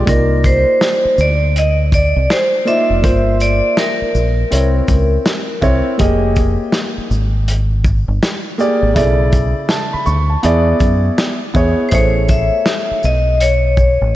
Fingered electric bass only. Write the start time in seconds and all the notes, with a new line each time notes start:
0.07 C2
1.05 muted fingered electric bass stroke
1.18 D2
2.16 C2
2.90 F1
3.04 G1
4.02 muted fingered electric bass stroke
4.15 A#1
4.52 C2
4.88 C#2
5.62 C2
6.00 F1
6.98 muted fingered electric bass stroke
7.11 G#1
8.08 G1
8.83 G#1
8.96 B1
9.94 muted fingered electric bass stroke
10.07 D2
10.44 E2
10.80 F#2
11.55 E2
11.92 A1
12.91 muted fingered electric bass stroke
13.04 B1
14.01 A1